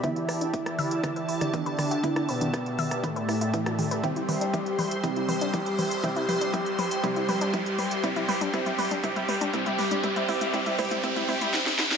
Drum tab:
HH |xxoxxxoxxxoxxxox|xxoxxxoxxxoxxxox|xxoxxxoxxxoxxxox|xxoxxxoxxxoxxxox|
SD |--r--r--r--r--r-|-r--r--r--r--r--|----------------|----------------|
T2 |o-----o-o--o--o-|o--o--o-o-----o-|o-o-o-o-o-o-o-o-|o-o-o-o-o-o-o-o-|
BD |o---o---o---o---|o---o---o---o---|o---o---o---o---|o---o---o---o---|

HH |xxoxxxoxxxoxxxox|xxoxxxoxxxox----|
SD |----------------|------------oooo|
T2 |oooooooooooooooo|oooooooooooo----|
BD |o---o---o---o---|o---o---o-------|